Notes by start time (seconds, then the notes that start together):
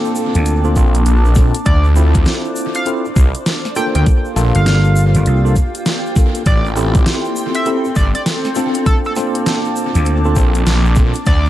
Already playing: A#3 C4 D4 F4 A4 G5 A5 D6
0.05 shaker
0.16 shaker
0.34 D2, closed hi-hat, shaker
0.45 closed hi-hat, shaker
0.64 C4 D4 F4 A4, shaker
0.76 A#1 C4 D4 F4 A4, kick, shaker
0.94 closed hi-hat, shaker
1.06 A#1, closed hi-hat, shaker
1.25 shaker
1.35 C4 D4 F4 A4, kick, snare, shaker
1.54 closed hi-hat, shaker
1.65 D2 C5 D5, kick, closed hi-hat, shaker
1.84 shaker
1.96 C4 E4 F4 A4, shaker
2.14 kick, closed hi-hat, shaker
2.23 D5, snare, closed hi-hat, shaker
2.32 C5
2.45 shaker
2.56 shaker
2.74 F5, closed hi-hat, shaker
2.86 C4 E4 F4 A4, closed hi-hat, shaker
3.05 shaker
3.16 C2, kick, shaker
3.35 closed hi-hat, shaker
3.46 snare, closed hi-hat, shaker
3.65 snare, shaker
3.76 A#3 D4 F4 A4 G5, snare, shaker
3.95 D2 G5, closed hi-hat, shaker
4.06 F4 G4 F5, kick, closed hi-hat, shaker
4.25 shaker
4.36 A#1 A#3 D4 F4 A4, snare, shaker
4.44 A#3
4.51 G5
4.55 G1 F5, closed hi-hat, shaker
4.66 snare, closed hi-hat, shaker
4.84 shaker
4.96 shaker
5.15 G1, closed hi-hat, shaker
5.26 C2, closed hi-hat, shaker
5.45 A#3 D4 F4 A4, shaker
5.56 kick, shaker
5.75 closed hi-hat, shaker
5.86 snare, closed hi-hat, shaker
6.06 shaker
6.16 A#3 D4 F4 A4, kick, snare, shaker
6.35 closed hi-hat, shaker
6.46 A1 C4 A4 D5 G5 C6, kick, closed hi-hat, shaker
6.65 shaker
6.76 C4 E4 G4 A4, shaker
6.90 A4
6.95 kick, closed hi-hat, shaker
7.06 snare, closed hi-hat, shaker
7.25 shaker
7.36 shaker
7.55 E5, closed hi-hat, shaker
7.65 C4 E4 G4 A4, closed hi-hat, shaker
7.84 shaker
7.96 G1 D5, kick, shaker
8.15 D5, closed hi-hat, shaker
8.26 snare, closed hi-hat, shaker
8.44 snare, shaker
8.55 C4 D4 F4 A4, snare, shaker
8.74 closed hi-hat, shaker
8.86 A#3 D4 A4 A5 D6, kick, closed hi-hat, shaker
9.05 A4, shaker
9.16 C4 D4 F4 A4, snare, shaker
9.35 closed hi-hat, shaker
9.46 snare, closed hi-hat, shaker
9.65 shaker
9.76 A#3, shaker
9.95 D2 A5, closed hi-hat, shaker
10.05 closed hi-hat, shaker
10.24 C4 D4 F4 A4, shaker
10.36 A#1 C4 D4 F4 A4, kick, shaker
10.54 closed hi-hat, shaker
10.66 A#1, snare, closed hi-hat, shaker
10.85 shaker
10.95 C4 D4 F4 A4, kick, snare, shaker
11.14 closed hi-hat, shaker
11.26 D2 C5 D5, kick, closed hi-hat, shaker
11.45 shaker